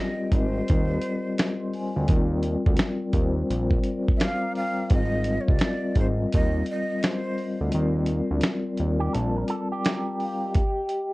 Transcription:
Already playing: vibraphone G3 C4 F4 A#4 D5 D#5, flute D#5
0.31 analog synth bass G#1, vibraphone C4 F4 A#4, flute C5, kick, closed hi-hat
0.35 vibraphone D#5
0.68 analog synth bass D#2, kick, closed hi-hat
1.02 closed hi-hat
1.38 finger snap, snare, closed hi-hat
1.60 vibraphone D#5 C6
1.74 vibraphone C5 G#5, open hi-hat
1.96 analog synth bass D2, vibraphone A#4 G5
2.08 analog synth bass D#2, vibraphone G3 C4 F4, kick, closed hi-hat
2.12 vibraphone A#4 D5
2.43 closed hi-hat
2.66 analog synth bass D2, kick
2.77 finger snap, snare, closed hi-hat
3.13 analog synth bass D#2, vibraphone C4 F4, kick, closed hi-hat
3.18 vibraphone A#4 C5
3.50 analog synth bass A#1, closed hi-hat
3.71 kick
3.83 vibraphone G3 C4 F4 A#4, closed hi-hat
3.88 vibraphone D5
4.09 kick
4.17 flute E5, closed hi-hat
4.21 flute F5, vibraphone D6, finger snap, snare
4.43 vibraphone D5 A#5
4.56 vibraphone A#4 G5, flute F5, open hi-hat
4.79 vibraphone F5
4.90 analog synth bass G#1, vibraphone G3 C4 F4 A#4, flute D#5, kick, closed hi-hat
4.95 vibraphone D#5
5.24 closed hi-hat
5.41 flute C#5
5.47 analog synth bass C2, vibraphone G3 C4 F4 A#4, flute D5, kick
5.52 vibraphone D5
5.59 finger snap, snare, closed hi-hat
5.95 analog synth bass G#1, vibraphone C4 F4 A#4 D#5, kick, closed hi-hat
5.99 flute C5
6.32 analog synth bass D#2, flute D#5, kick, closed hi-hat
6.66 closed hi-hat
6.70 flute D#5
7.03 flute C5, finger snap, snare, closed hi-hat
7.38 open hi-hat
7.61 analog synth bass D2
7.70 vibraphone G3 C4 F4 A#4, closed hi-hat
7.74 analog synth bass D#2, vibraphone D5
8.06 closed hi-hat
8.31 analog synth bass D2
8.41 finger snap, snare, closed hi-hat
8.77 analog synth bass D#2, vibraphone G3 C4 F4 A#4, closed hi-hat
8.81 vibraphone D5
9.00 clean electric guitar G4
9.13 analog synth bass A#1, clean electric guitar A4, closed hi-hat
9.37 clean electric guitar A#4
9.48 clean electric guitar A4, closed hi-hat
9.72 clean electric guitar G4
9.85 vibraphone D5 A#5, finger snap, snare, closed hi-hat
10.08 vibraphone A#4 G5
10.20 vibraphone F5, open hi-hat
10.44 vibraphone G4 D#5
10.55 vibraphone G4 G5, kick, closed hi-hat
10.89 closed hi-hat

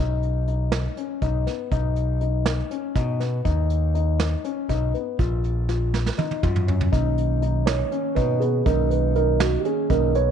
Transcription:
Already playing: grand piano D#4
0.00 picked electric bass B1
0.23 closed hi-hat
0.48 grand piano D#4, closed hi-hat
0.72 snare, closed hi-hat
0.97 grand piano C#4, closed hi-hat
1.22 picked electric bass B1, grand piano D#4, kick, closed hi-hat
1.46 grand piano B3, snare, closed hi-hat
1.72 picked electric bass B1, grand piano D#4, kick, closed hi-hat
1.96 closed hi-hat
2.21 grand piano D#4, closed hi-hat
2.46 snare, closed hi-hat
2.71 grand piano C#4, closed hi-hat
2.95 picked electric bass B2, grand piano D#4, kick, snare, closed hi-hat
3.20 grand piano B3, snare, closed hi-hat
3.45 picked electric bass D#2, grand piano D#4, kick, closed hi-hat
3.70 closed hi-hat
3.95 grand piano D#4, closed hi-hat
4.20 snare, closed hi-hat
4.44 grand piano C#4, closed hi-hat
4.69 picked electric bass B1, grand piano D#4, kick, closed hi-hat
4.94 grand piano B3, closed hi-hat
5.19 picked electric bass A#1, grand piano F4, kick, closed hi-hat
5.44 closed hi-hat
5.69 grand piano F4, snare, closed hi-hat
5.94 snare
6.06 snare
6.18 grand piano D#4, high tom
6.31 high tom
6.43 picked electric bass F#2, grand piano F4, kick, mid tom
6.56 mid tom
6.68 grand piano C#4, floor tom
6.81 floor tom
6.92 picked electric bass B1, tine electric piano D#3 A#3 C#4, grand piano D#4, kick, closed hi-hat
7.18 closed hi-hat
7.42 grand piano D#4, closed hi-hat
7.66 tine electric piano C#5, snare, closed hi-hat
7.92 grand piano C#4, closed hi-hat
8.15 picked electric bass B2, grand piano D#4, tine electric piano B4, kick, closed hi-hat
8.40 grand piano B3, tine electric piano G#4, closed hi-hat
8.65 picked electric bass B1, tine electric piano D#3 A#3 C#4 A#4, grand piano D#4, kick, closed hi-hat
8.90 tine electric piano B4, closed hi-hat
9.16 grand piano D#4, tine electric piano A#4, closed hi-hat
9.40 tine electric piano F#4, snare, closed hi-hat
9.60 tine electric piano G4
9.65 grand piano C#4, tine electric piano G#4, closed hi-hat
9.90 picked electric bass B1, tine electric piano D#3 A#3 C#4 A#4, grand piano D#4, kick, closed hi-hat
10.15 grand piano B3, tine electric piano C#5, closed hi-hat

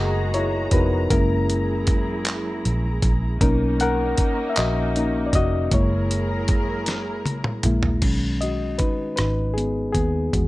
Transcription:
Already playing: fingered electric bass F#1, string section G#3 F#4 G#4 A#5, reed electric piano A#3 B3 D#4 F#4 A#4 D#5 F#5
0.34 reed electric piano E4 C#5, closed hi-hat
0.71 fingered electric bass F1, reed electric piano B3 D#4 F#4 A#4 B4, kick, closed hi-hat
1.10 fingered electric bass F#1, string section F#3 E4 G#4, reed electric piano G#3 A#3 C#4 E4 A#4, kick, closed hi-hat
1.50 closed hi-hat
1.87 kick, closed hi-hat
2.25 clap, closed hi-hat
2.65 fingered electric bass A#1, closed hi-hat
3.02 fingered electric bass A#1, kick, closed hi-hat
3.41 fingered electric bass B1, string section A#3 C#4 D#4, reed electric piano A#3 C#4 D#4 A#4, kick, closed hi-hat
3.80 reed electric piano A#4 F#5, closed hi-hat
4.18 muted fingered electric bass stroke, kick, closed hi-hat
4.50 reed electric piano E5
4.56 fingered electric bass A#1, reed electric piano F#4 D#5, clap, closed hi-hat
4.96 reed electric piano A#3 C#4 D#4, closed hi-hat
5.27 reed electric piano D5
5.33 fingered electric bass F1, reed electric piano F#4 D#5, kick, closed hi-hat
5.71 fingered electric bass F#1, string section F#3 E4 G#4 A#4, reed electric piano G#3 A#3 E4 C#5, kick, closed hi-hat
6.11 closed hi-hat
6.48 kick, closed hi-hat
6.86 snare, closed hi-hat
7.26 fingered electric bass A#1, closed hi-hat, high tom
7.44 mid tom
7.63 fingered electric bass A#1, reed electric piano G#3 A#3 E4, closed hi-hat, mid tom
7.83 floor tom
8.02 fingered electric bass B1, reed electric piano D#3 G#3 C#4, kick, closed hi-hat, crash
8.41 reed electric piano F#4 D#5, closed hi-hat
8.78 reed electric piano D#4 B4, muted fingered electric bass stroke, kick, closed hi-hat
9.16 fingered electric bass G#1, reed electric piano D#4 B4, cross-stick, closed hi-hat
9.54 reed electric piano B3 G#4
9.58 closed hi-hat
9.93 fingered electric bass D#2, reed electric piano B3 G#4, kick, closed hi-hat
10.33 fingered electric bass E2, reed electric piano D#3 G#3 F#4, kick, closed hi-hat

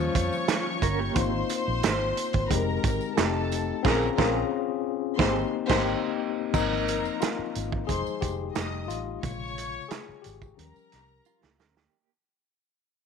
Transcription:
Already playing: tenor saxophone F3, tine electric piano G3 A#3 C#4 F4, string section C#5 C#6
0.15 fingered electric bass F2, kick, closed hi-hat, tambourine
0.33 tambourine
0.48 clean electric guitar F4, snare, closed hi-hat, tambourine
0.82 fingered electric bass G1, clean electric guitar C#4 A#4, kick, closed hi-hat, tambourine
0.99 clean electric guitar A#3 G4
1.14 fingered electric bass G#1, tine electric piano A#3 C4 D#4 F4, string section C5 C6, kick, closed hi-hat, tambourine
1.49 closed hi-hat, tambourine
1.68 fingered electric bass A#1
1.83 fingered electric bass G#1, snare, closed hi-hat, tambourine
2.17 closed hi-hat, tambourine
2.33 fingered electric bass G#1, kick, closed hi-hat
2.50 fingered electric bass F1, tine electric piano G#3 C4 D#4 G4, string section A#4 A#5, kick, closed hi-hat, tambourine
2.84 fingered electric bass G#1, kick, closed hi-hat, tambourine
3.01 tambourine
3.16 fingered electric bass F1, tine electric piano A3 C4 D#4 F#4, string section A4 A5, snare, closed hi-hat, tambourine
3.25 tine electric piano G4
3.52 closed hi-hat, tambourine
3.83 fingered electric bass A#1, tine electric piano C4 C#4 F4 G#4, clean electric guitar C4 G#4, string section A#4 A#5, kick, snare, crash
4.17 fingered electric bass A#1, tine electric piano C4 C#4 F4 G#4, clean electric guitar C4 G#4, string section A#4 A#5, kick, snare
5.17 fingered electric bass G#1, tine electric piano A#3 C4 D#4, clean electric guitar C4 G#4, string section C5 C6, kick, snare
5.27 tine electric piano G4
5.68 fingered electric bass G#1, tine electric piano A#3 C4 D#4, clean electric guitar A#3 G4, string section C5 C6, kick, snare, crash
5.78 tine electric piano G4
6.52 fingered electric bass G#1, tine electric piano F3 A#3 C4 D#4, string section A#4 A#5, kick, crash, tambourine
6.88 closed hi-hat, tambourine
7.05 tambourine
7.20 tine electric piano F4, snare, closed hi-hat, tambourine
7.39 muted fingered electric bass stroke
7.55 fingered electric bass G#1, closed hi-hat, tambourine
7.72 kick
7.87 fingered electric bass F1, tine electric piano F3 G#3 D#4 G#4, string section C5 C6, kick, closed hi-hat, tambourine
8.06 muted fingered electric bass stroke, tambourine
8.21 fingered electric bass F1, tine electric piano G4, kick, closed hi-hat, tambourine
8.55 fingered electric bass F1, tine electric piano G3 A3 D#4, string section D#5 D#6, snare, closed hi-hat, tambourine
8.88 fingered electric bass A1, tine electric piano F4, closed hi-hat, tambourine
9.22 fingered electric bass A#1, tine electric piano C3 C#3 G#3, string section C#5 C#6, kick, closed hi-hat, tambourine
9.58 closed hi-hat, tambourine
9.88 tine electric piano G#4, snare, closed hi-hat, tambourine
10.09 muted fingered electric bass stroke
10.22 tine electric piano G4, closed hi-hat
10.26 fingered electric bass G#1, tambourine
10.42 kick, tambourine
10.57 fingered electric bass D#2, tine electric piano F3 G3 C#4, string section A#4 A#5, closed hi-hat, tambourine
10.76 tambourine
10.92 fingered electric bass C2, snare, closed hi-hat, tambourine
11.25 clean electric guitar F4, tambourine
11.43 fingered electric bass C#2, snare
11.60 fingered electric bass D2, clean electric guitar C#4 A#4, snare, tambourine
11.77 clean electric guitar A#3 G4, snare

